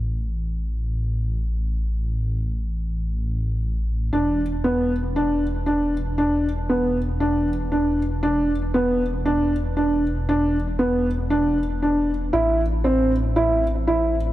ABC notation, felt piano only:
X:1
M:4/4
L:1/8
Q:1/4=117
K:Ephr
V:1 name="Felt piano"
z8 | z8 | D2 B,2 D2 D2 | D2 B,2 D2 D2 |
D2 B,2 D2 D2 | D2 B,2 D2 D2 | E2 C2 E2 E2 |]